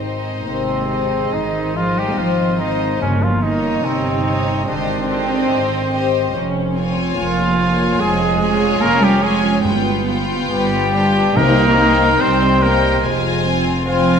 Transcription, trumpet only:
0.47 1.35 C4 medium
1.33 1.78 D#4 medium
1.77 2.00 F4 medium
1.98 2.20 G4 medium
2.18 2.61 F4 medium
2.60 3.00 D#4 medium
3.01 3.25 C#4 loud
3.24 3.44 F4 medium
3.43 3.86 D#4 loud
3.85 4.70 C4 medium
4.68 5.94 D4 medium
7.18 8.01 F4 loud
8.00 8.83 G#4 loud
8.81 9.05 A#4 loud
9.03 9.24 G4 loud
9.23 9.65 G#4 loud
10.51 11.38 G4 loud
11.36 12.22 A#4 loud
12.21 12.64 C5 loud
12.62 13.04 A#4 loud
13.87 14.19 F4 loud

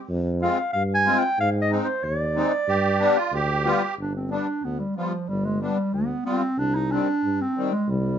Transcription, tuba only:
0.09 0.48 F2 loud
0.74 1.13 G2 medium
1.39 1.78 G#2 loud
2.03 2.42 D#2 medium
2.67 3.07 G2 medium
3.32 3.72 D2 loud
3.97 4.36 G1 medium
4.63 4.83 D2 medium
5.29 5.68 G1 medium
5.94 6.13 D2 medium
6.57 6.97 C2 medium
7.23 7.43 G2 medium
7.88 8.19 C2 medium

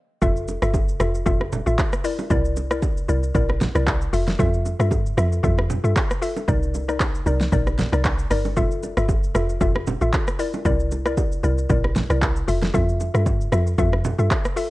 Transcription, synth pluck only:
0.22 0.59 F4 medium
0.22 0.59 A4 medium
0.22 0.59 E5 loud
0.62 0.71 F4 medium
0.62 0.71 A4 medium
0.62 0.72 E5 medium
1.00 1.11 F4 medium
1.00 1.11 A4 medium
1.00 1.11 E5 medium
1.26 1.37 F4 medium
1.26 1.37 A4 medium
1.26 1.37 E5 loud
1.66 1.76 F4 medium
1.66 1.76 A4 medium
1.66 1.76 E5 medium
2.04 2.15 E4 medium
2.04 2.16 A#4 medium
2.04 2.16 D5 medium
2.30 2.67 E4 loud
2.30 2.68 A#4 medium
2.30 2.68 D5 loud
2.71 2.80 E4 medium
2.71 2.80 A#4 medium
2.71 2.80 D5 medium
3.08 3.20 E4 medium
3.08 3.20 A#4 medium
3.08 3.20 D5 medium
3.35 3.46 E4 medium
3.35 3.46 A#4 medium
3.35 3.46 D5 loud
3.75 3.84 E4 medium
3.75 3.84 A#4 medium
3.75 3.85 D5 medium
4.13 4.24 F4 medium
4.13 4.24 A4 medium
4.13 4.24 E5 medium
4.39 4.76 F4 loud
4.39 4.76 A4 medium
4.39 4.76 E5 loud
4.79 4.89 F4 medium
4.79 4.89 A4 medium
4.79 4.89 E5 medium
5.17 5.29 F4 medium
5.17 5.29 A4 medium
5.17 5.29 E5 medium
5.43 5.55 F4 medium
5.43 5.55 A4 medium
5.43 5.55 E5 loud
5.84 5.93 F4 medium
5.84 5.93 A4 medium
5.84 5.93 E5 medium
6.22 6.33 F4 medium
6.22 6.33 A4 medium
6.22 6.33 E5 medium
6.48 6.85 D#4 loud
6.48 6.85 A#4 medium
6.48 6.85 D5 loud
6.88 6.98 D#4 medium
6.88 6.98 A#4 medium
6.88 6.98 D5 medium
7.26 7.37 D#4 medium
7.26 7.38 A#4 medium
7.26 7.38 D5 medium
7.52 7.63 D#4 medium
7.52 7.64 A#4 medium
7.52 7.64 D5 loud
7.92 8.02 D#4 medium
7.92 8.02 A#4 medium
7.92 8.02 D5 medium
8.30 8.42 D#4 medium
8.30 8.42 A#4 medium
8.30 8.42 D5 medium
8.57 8.94 F4 loud
8.57 8.94 A4 medium
8.57 8.94 E5 loud
8.97 9.06 F4 medium
8.97 9.06 A4 medium
8.97 9.06 E5 medium
9.35 9.46 F4 medium
9.35 9.46 A4 medium
9.35 9.46 E5 medium
9.61 9.72 F4 medium
9.61 9.72 A4 medium
9.61 9.72 E5 loud
10.01 10.10 F4 medium
10.01 10.11 A4 medium
10.01 10.11 E5 medium
10.39 10.50 E4 medium
10.39 10.50 A#4 medium
10.39 10.51 D5 medium
10.65 11.02 E4 loud
10.65 11.02 A#4 medium
10.65 11.03 D5 loud
11.06 11.15 E4 medium
11.06 11.15 A#4 medium
11.06 11.15 D5 medium
11.43 11.55 E4 medium
11.43 11.55 A#4 medium
11.43 11.55 D5 medium
11.69 11.81 E4 loud
11.69 11.81 A#4 medium
11.69 11.81 D5 loud
12.10 12.19 E4 medium
12.10 12.19 A#4 medium
12.10 12.19 D5 medium
12.48 12.59 F4 medium
12.48 12.59 A4 medium
12.48 12.59 E5 medium
12.74 13.11 F4 loud
12.74 13.11 A4 medium
12.74 13.11 E5 loud
13.14 13.23 F4 medium
13.14 13.24 A4 medium
13.14 13.24 E5 medium
13.52 13.63 F4 medium
13.52 13.63 A4 medium
13.52 13.64 E5 medium
13.78 13.89 F4 medium
13.78 13.90 A4 medium
13.78 13.90 E5 loud
14.18 14.28 F4 medium
14.18 14.28 A4 medium
14.18 14.28 E5 medium
14.56 14.68 F4 medium
14.56 14.68 A4 medium
14.56 14.68 E5 medium

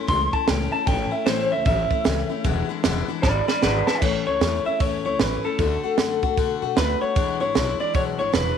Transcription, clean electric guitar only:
0.09 0.33 C6 loud
0.33 0.47 A5 medium
0.47 0.72 G5 medium
0.72 0.87 A5 medium
0.87 1.12 G5 medium
1.12 1.26 E5 loud
1.26 1.50 C5 loud
1.52 1.65 E5 medium
1.67 2.81 E5 loud
3.22 3.46 D5 loud
3.22 3.47 B5 medium
3.48 3.61 D5 medium
3.48 3.62 B5 medium
3.62 3.86 B4 medium
3.62 3.85 D5 medium
3.62 3.86 B5 medium
3.87 4.01 B4 medium
3.87 4.02 A5 loud
4.02 4.26 C#5 loud
4.27 4.66 C#5 loud
4.66 4.80 E5 medium
4.80 5.04 C#5 loud
5.06 5.20 C#5 medium
5.20 5.45 B4 loud
5.45 6.58 A4 medium
6.77 7.01 B4 loud
7.01 7.38 C#5 loud
7.41 7.77 C#5 loud
7.80 7.95 D5 medium
7.95 8.02 C#5 loud
8.19 8.34 C#5 medium
8.34 8.58 B4 medium

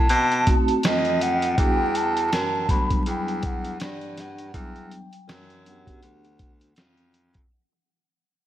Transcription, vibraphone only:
0.46 0.74 A3 medium
0.46 0.75 C4 medium
0.46 0.75 D#4 medium
0.46 0.75 F#4 medium
1.57 1.85 G3 medium
1.57 1.86 B3 medium
1.57 1.85 D4 medium
1.57 1.86 F#4 medium
2.68 3.75 F#3 medium
2.68 3.74 G3 medium
2.68 3.74 B3 medium
2.68 3.74 D4 medium
4.54 5.09 F#3 medium
4.54 5.08 G3 medium
4.54 5.08 B3 medium
4.54 5.08 D4 medium
5.64 5.72 F#3 soft
5.64 6.19 B3 medium
5.64 6.19 D4 medium
5.64 6.20 F#4 medium
5.71 6.22 G4 medium

